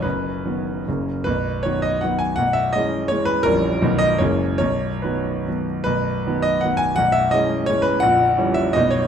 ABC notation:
X:1
M:3/4
L:1/8
Q:1/4=160
K:B
V:1 name="Grand piano"
B4 z2 | B2 c d f g | f e d2 c B | A3 d c2 |
c2 B3 z | B3 d f g | f e d2 c B | f3 e d c |]
V:2 name="Grand piano" clef=bass
[F,,,F,,]2 [D,F,B,]2 [F,,,F,,C,F,A,]2 | [B,,,,B,,,]2 [D,F,B,]2 [D,F,B,]2 | [B,,,,B,,,]2 [E,G,C]2 [E,G,C]2 | [A,,,,A,,,E,=G,C]2 [B,,,,B,,,D,F,B,]2 [F,,,F,,E,^G,A,]2 |
[B,,,,B,,,]2 [D,F,B,]2 [D,F,B,]2 | [B,,,,B,,,]2 [D,F,B,]2 [D,F,B,]2 | [B,,,,B,,,]2 [E,G,C]2 [E,G,C]2 | [A,,,,A,,,]2 [E,=G,C]2 [B,,,,B,,,F,B,D]2 |]